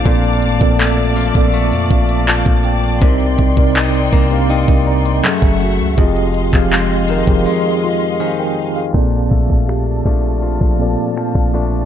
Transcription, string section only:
\new Staff \with { instrumentName = "String section" } { \time 4/4 \key bes \major \tempo 4 = 81 << { <f'' a'' d'''>1 | <ees' g'' c'''>2. <fes'' ges'' des'''>4 | <ees'' f'' c'''>1 | <d'' f''>1 | } \\ { d''1~ | d''2. a4 | aes1 | a''1 | } >> }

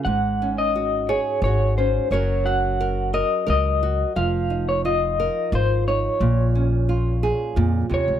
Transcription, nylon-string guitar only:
\new Staff \with { instrumentName = "Nylon-string guitar" } { \time 3/4 \key aes \mixolydian \tempo 4 = 88 << { aes'8 des'8 ges'8 aes'8 ges'8 des'8 | <des' ges' bes'>8 ges'8 bes'8 bes'8 bes'8 ges'8 | r8 ees'8 f'8 bes'8 f'8 ees'8 | r8 des'8 f'8 aes'4. | } \\ { aes,2. | ges2. | f2. | bes,2 bes,8 c8 | } >> }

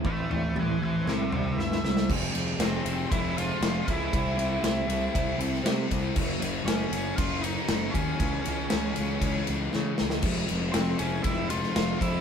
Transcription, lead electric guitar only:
\new Staff \with { instrumentName = "Lead electric guitar" } { \time 4/4 \key c \phrygian \tempo 4 = 118 <e'' a''>8 <e'' a''>8 <e'' aes''>8 <e'' aes''>8 <c'' e''>8 <c'' e''>8 e''4 | \key f \minor r4 <c' c''>4 <e' e''>8 <f' f''>4 <e' e''>8~ | <e' e''>2~ <e' e''>8 r4. | r4 <des' des''>4 <f' f''>8 <ees' ees''>4 <des' des''>8~ |
<des' des''>2~ <des' des''>8 r4. | r4 <c' c''>8 <des' des''>8 <e' e''>8 <f' f''>4 <e' e''>8 | }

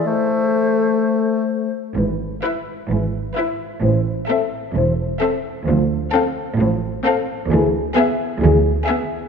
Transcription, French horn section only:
\new Staff \with { instrumentName = "French horn section" } { \time 4/4 \key a \minor \tempo 4 = 130 a2.~ a8 r8 | <e b'>8 r4. <e b'>8 r4. | <e c''>8 r4. <e c''>8 r4. | <f c''>8 r4. <f c''>8 r4. |
<e gis'>8 r4. <e gis'>8 r4. | }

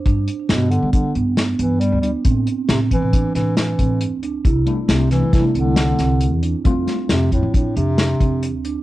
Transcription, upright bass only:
\new Staff \with { instrumentName = "Upright bass" } { \clef bass \time 5/4 \key c \major \tempo 4 = 136 g,8 r8 g,8. g8 r16 g,4 g,8. d,8 r16 | a,8 r8 a,8. a,8 r16 a,4 a,8. d,8 r16 | c,8 r8 c,8. c8 r16 c,4 c,8. e,8 r16 | f,8 r8 f,8. f8 r16 f,4 f,8. d,8 r16 | }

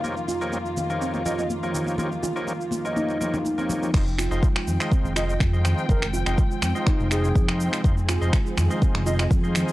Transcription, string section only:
\new Staff \with { instrumentName = "String section" } { \time 4/4 \key f \minor \tempo 4 = 123 << { <f, f'>1~ | <f, f'>1 | g''1~ | g''1 |
aes'1 | } \\ { <ees bes>1~ | <ees bes>1 | <f c'>1~ | <f c'>1~ |
<f c'>1 | } >> }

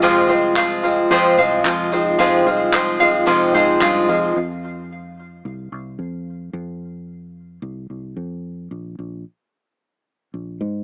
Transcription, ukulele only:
\new Staff \with { instrumentName = "Ukulele" } { \time 4/4 \key f \minor \tempo 4 = 110 f'8 c''8 f''8 f'8 c''8 f''8 f'8 c''8 | f''8 f'8 c''8 f''8 f'8 c''8 f''8 f'8 | r1 | r1 |
r1 | }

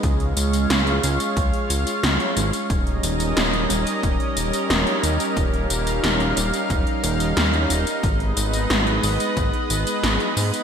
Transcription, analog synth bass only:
\new Staff \with { instrumentName = "Analog synth bass" } { \clef bass \time 4/4 \key des \mixolydian \tempo 4 = 90 des,8 des,8 des,8 des,8 des,8 des,8 des,8 aes,,8 | ees,,8 ees,,8 ees,,8 ees,,8 ees,,8 ees,,8 ees,,8 ees,8 | ees,,8 ees,,8 ees,,8 ees,,8 ees,,8 ees,,8 ees,8 ees,,8 | aes,,8 aes,,8 aes,,8 aes,,8 aes,,8 aes,,8 aes,,8 aes,8 | }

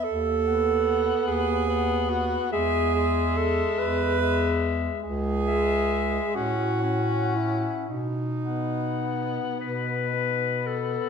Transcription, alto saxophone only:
\new Staff \with { instrumentName = "Alto saxophone" } { \time 6/8 \key b \mixolydian \tempo 4. = 47 a'4. gis'4 fis'8 | gis'4 a'8 b'4 r8 | gis'4. fis'4 e'8 | dis'2~ dis'8 r8 | }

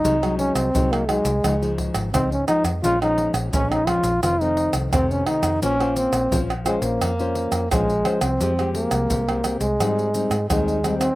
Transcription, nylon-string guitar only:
\new Staff \with { instrumentName = "Nylon-string guitar" } { \time 4/4 \key bes \minor \tempo 4 = 86 << { <ges aes ees'>16 <ges aes ees'>8. <ges aes ees'>8 <ges aes ees'>16 r16 <f aes ees'>16 <f aes ees'>8. <f aes ees'>16 r16 <f aes ees'>16 r16 | <f aes des'>16 <f aes des'>8. <f aes des'>8 <f aes des'>16 r16 <ees a c'>16 <ees a c'>8. <ees a c'>8 <ees a c'>8 | <des' f' c''>16 <des' f' c''>8. <des' f' c''>16 r16 <des' f' c''>8. <des' f' c''>8. <des' f' c''>16 r16 <des' f' c''>16 r16 | \key f \minor <aes c' g'>16 <aes c' g'>4 <aes c' g'>16 <aes c' g'>16 r16 <g c' ees'>8 <g c' ees'>16 r16 <g c' ees'>8 <g c' ees'>16 r16 | } \\ { c4 c4 des4 aes,4 | bes,4 f,4 f,4 c4 | bes4 f4 bes4 f4 | f4 c4 aes,4 ees4 | } >> }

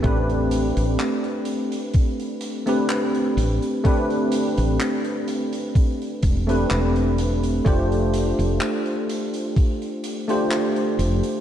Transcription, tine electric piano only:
\new Staff \with { instrumentName = "Tine electric piano" } { \time 4/4 \key a \minor \tempo 4 = 63 <a c' d' g' b'>2~ <a c' d' g' b'>8. <a c' d' g' b'>4~ <a c' d' g' b'>16 | <a c' d' g' b'>2~ <a c' d' g' b'>8. <a c' d' g' b'>4~ <a c' d' g' b'>16 | <a d' f' g' c''>2~ <a d' f' g' c''>8. <a d' f' g' c''>4~ <a d' f' g' c''>16 | }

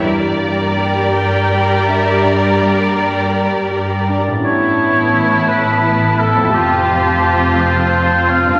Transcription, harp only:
\new Staff \with { instrumentName = "Harp" } { \time 6/8 \key g \lydian \tempo 4. = 55 <g, g'>8 bes8 g'8 bes'8 g'8 d'8 | g,8 bes8 g'8 bes'8 g'8 d'8 | <a, b cis' e'>2. | <f, a f' g'>2. | }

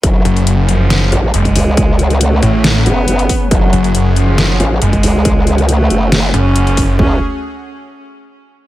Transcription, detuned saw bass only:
\new Staff \with { instrumentName = "Detuned saw bass" } { \clef bass \time 4/4 \key fis \minor \tempo 4 = 138 r8 fis,,8 fis,,4. r8 fis,,8 r8 | r4. a,,4 r4. | r8 fis,,8 fis,,4. r8 fis,,8 r8 | r2 r8 fis,,8 fis,,4 |
r1 | }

